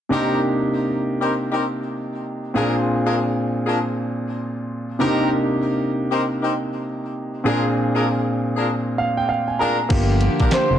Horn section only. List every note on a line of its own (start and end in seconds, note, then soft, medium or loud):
0.10 0.39 C4 medium
0.10 0.39 D#4 medium
0.10 0.39 G4 medium
0.10 0.39 A#4 medium
1.21 1.32 C4 medium
1.21 1.32 D#4 medium
1.21 1.32 G4 medium
1.21 1.32 A#4 medium
1.52 1.63 C4 medium
1.52 1.63 D#4 medium
1.52 1.63 G4 medium
1.52 1.63 A#4 medium
2.55 2.73 D4 medium
2.55 2.73 F4 medium
2.55 2.73 G#4 medium
2.55 2.74 A#4 loud
3.05 3.16 D4 medium
3.05 3.16 F4 medium
3.05 3.16 G#4 medium
3.05 3.16 A#4 medium
3.66 3.77 D4 medium
3.66 3.77 F4 medium
3.66 3.77 G#4 medium
3.66 3.77 A#4 medium
5.00 5.29 C4 medium
5.00 5.29 D#4 medium
5.00 5.29 G4 medium
5.00 5.29 A#4 loud
6.11 6.22 C4 medium
6.11 6.22 D#4 medium
6.11 6.22 G4 medium
6.11 6.22 A#4 medium
6.41 6.52 C4 medium
6.41 6.53 D#4 medium
6.41 6.53 G4 medium
6.41 6.53 A#4 medium
7.45 7.63 D4 medium
7.45 7.63 F4 medium
7.45 7.63 G#4 medium
7.45 7.63 A#4 loud
7.94 8.06 D4 medium
7.94 8.06 F4 medium
7.94 8.06 G#4 medium
7.94 8.06 A#4 medium
8.56 8.67 D4 medium
8.56 8.67 F4 medium
8.56 8.67 G#4 medium
8.56 8.67 A#4 medium
9.59 9.77 D4 medium
9.59 9.78 F4 medium
9.59 9.78 G#4 medium
9.59 9.78 A#4 medium
10.40 10.51 D4 medium
10.40 10.51 F4 medium
10.40 10.51 G4 medium
10.40 10.51 A#4 medium